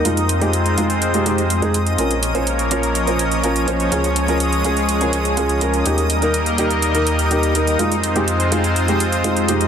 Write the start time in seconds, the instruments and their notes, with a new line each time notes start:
Already playing: supersaw synth D#4, synth texture D#5 D#6
0.05 detuned saw bass F2, felt piano G#3 D#4 F4, supersaw synth G#3 C4 F4 C5, closed hi-hat
0.17 closed hi-hat
0.29 closed hi-hat
0.41 felt piano G#3 D#4 G4, closed hi-hat
0.53 closed hi-hat
0.66 closed hi-hat
0.78 felt piano G#3 D#4 F4, closed hi-hat
0.90 closed hi-hat
1.02 closed hi-hat
1.14 felt piano G#3 D#4 G4, closed hi-hat
1.26 felt piano G#3 D#4 G4, closed hi-hat
1.38 closed hi-hat
1.50 closed hi-hat
1.62 felt piano G#3 D#4 G#4, closed hi-hat
1.74 closed hi-hat
1.87 closed hi-hat
1.98 detuned saw bass A#1, supersaw synth F3 A#3 C#4 A#4 C#5, felt piano C#4 F4 A#4, closed hi-hat
2.11 closed hi-hat
2.23 closed hi-hat
2.35 felt piano C#4 F4 C5, closed hi-hat
2.47 closed hi-hat
2.59 closed hi-hat
2.71 felt piano C#4 F4 A#4, closed hi-hat
2.83 closed hi-hat
2.95 closed hi-hat
3.07 felt piano C#4 F4 C5, closed hi-hat
3.19 closed hi-hat
3.32 closed hi-hat
3.44 felt piano C#4 F4 A#4, closed hi-hat
3.56 closed hi-hat
3.68 felt piano C#4 F4 C5, closed hi-hat
3.80 closed hi-hat
3.92 detuned saw bass C#2, supersaw synth G#3 G#4, felt piano C#4 F4 G#4, closed hi-hat
4.04 closed hi-hat
4.16 closed hi-hat
4.28 felt piano C#4 F4 A#4, closed hi-hat
4.40 closed hi-hat
4.53 closed hi-hat
4.64 felt piano C#4 F4 G#4, closed hi-hat
4.77 closed hi-hat
4.89 closed hi-hat
5.01 felt piano C#4 F4 A#4, closed hi-hat
5.13 closed hi-hat
5.25 closed hi-hat
5.37 felt piano C#4 F4 G#4, closed hi-hat
5.49 closed hi-hat
5.61 felt piano C#4 F4 A#4, closed hi-hat
5.74 closed hi-hat
5.86 detuned saw bass D#2, supersaw synth G3 A#3 D#4 A#4 D#5, felt piano A#3 D#4 G4, closed hi-hat
5.98 closed hi-hat
6.10 closed hi-hat
6.22 felt piano A#3 D#4 A#4, closed hi-hat
6.34 closed hi-hat
6.46 closed hi-hat
6.58 felt piano A#3 D#4 G4, closed hi-hat
6.70 closed hi-hat
6.82 closed hi-hat
6.95 felt piano A#3 D#4 A#4, closed hi-hat
7.07 closed hi-hat
7.19 closed hi-hat
7.31 felt piano A#3 D#4 G4, closed hi-hat
7.43 closed hi-hat
7.55 felt piano A#3 D#4 A#4, closed hi-hat
7.67 closed hi-hat
7.79 detuned saw bass F2, felt piano G#3 D#4 F4, supersaw synth G#3 C4 F4 C5, closed hi-hat
7.92 closed hi-hat
8.04 closed hi-hat
8.16 felt piano G#3 D#4 G4, closed hi-hat
8.28 closed hi-hat
8.40 closed hi-hat
8.52 felt piano G#3 D#4 F4, closed hi-hat
8.64 closed hi-hat
8.76 closed hi-hat
8.88 felt piano G#3 D#4 G4, closed hi-hat
9.00 closed hi-hat
9.12 closed hi-hat
9.24 felt piano G#3 D#4 F4, closed hi-hat
9.37 closed hi-hat
9.48 felt piano G#3 D#4 G4, closed hi-hat
9.61 closed hi-hat